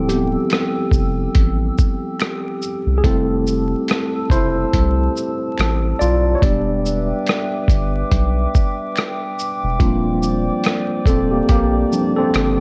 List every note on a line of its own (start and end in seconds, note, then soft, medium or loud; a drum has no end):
0.00 0.36 D1 loud
0.00 0.25 F3 soft
0.00 0.25 G3 soft
0.00 0.26 C4 soft
0.00 0.26 E4 soft
0.00 6.38 G4 medium
0.00 0.11 A4 medium
0.00 3.00 G5 medium
0.00 3.01 E6 medium
0.09 2.59 B3 medium
0.09 2.58 G4 medium
0.09 closed hi-hat soft
0.09 shaker soft
0.50 finger snap medium
0.50 cross-stick loud
0.50 closed hi-hat medium
0.91 1.27 F1 medium
0.91 kick medium
0.91 shaker soft
1.35 1.71 A1 loud
1.35 kick medium
1.35 closed hi-hat medium
1.78 kick loud
1.78 shaker soft
2.19 finger snap medium
2.19 cross-stick loud
2.19 closed hi-hat medium
2.62 shaker medium
2.86 3.01 C2 medium
2.98 3.04 G#4 medium
3.04 3.74 F1 loud
3.04 3.63 G3 soft
3.04 3.63 A3 soft
3.04 3.85 C4 medium
3.04 3.63 E4 medium
3.04 3.84 A4 medium
3.04 6.39 A5 medium
3.04 6.39 E6 medium
3.04 kick loud
3.04 closed hi-hat medium
3.47 shaker soft
3.88 finger snap medium
3.88 cross-stick loud
3.88 closed hi-hat medium
4.30 4.66 F1 medium
4.30 5.97 E4 medium
4.30 6.05 C5 loud
4.30 kick medium
4.30 closed hi-hat medium
4.30 shaker soft
4.73 5.09 C2 loud
4.73 kick medium
4.73 closed hi-hat medium
5.17 shaker soft
5.58 5.93 A1 medium
5.58 finger snap medium
5.58 cross-stick loud
5.58 closed hi-hat medium
5.99 6.35 B1 loud
5.99 6.34 F4 medium
5.99 6.37 D5 loud
5.99 shaker medium
6.35 6.42 C#5 medium
6.42 7.12 E1 loud
6.42 7.01 G3 medium
6.42 7.01 B3 soft
6.42 7.02 D4 medium
6.42 9.35 G4 medium
6.42 9.77 B4 medium
6.42 9.34 D5 medium
6.42 9.77 E5 medium
6.42 12.60 G5 medium
6.42 12.60 D6 medium
6.42 kick loud
6.42 closed hi-hat medium
6.86 shaker soft
7.26 finger snap medium
7.26 cross-stick loud
7.26 closed hi-hat medium
7.68 8.04 G1 medium
7.68 kick loud
7.68 closed hi-hat medium
7.68 shaker medium
8.11 8.47 B1 loud
8.11 kick medium
8.11 closed hi-hat medium
8.55 kick loud
8.55 shaker soft
8.96 finger snap medium
8.96 cross-stick loud
8.96 closed hi-hat medium
9.39 shaker medium
9.63 9.78 E1 medium
9.79 10.50 D#1 loud
9.79 11.91 F3 soft
9.79 11.92 G3 soft
9.79 11.04 A#3 medium
9.79 11.08 C4 soft
9.79 11.92 D4 soft
9.79 11.03 F4 medium
9.79 12.60 C5 medium
9.79 12.60 D5 medium
9.79 kick loud
9.79 closed hi-hat medium
10.23 shaker soft
10.64 finger snap medium
10.64 cross-stick loud
10.64 closed hi-hat medium
11.06 11.41 D#1 loud
11.06 11.31 C4 medium
11.06 11.32 A4 medium
11.06 kick medium
11.06 closed hi-hat soft
11.06 shaker medium
11.31 11.49 A#3 medium
11.31 11.48 G4 medium
11.49 11.85 A#1 medium
11.49 12.12 A#3 medium
11.49 12.11 G4 loud
11.49 kick medium
11.49 closed hi-hat medium
11.92 12.30 F3 soft
11.92 12.30 G3 soft
11.92 12.17 C4 soft
11.92 12.31 D4 soft
11.92 shaker soft
12.16 12.60 C4 medium
12.16 12.60 A4 loud
12.34 12.60 G1 medium
12.34 finger snap medium
12.34 cross-stick loud
12.34 closed hi-hat medium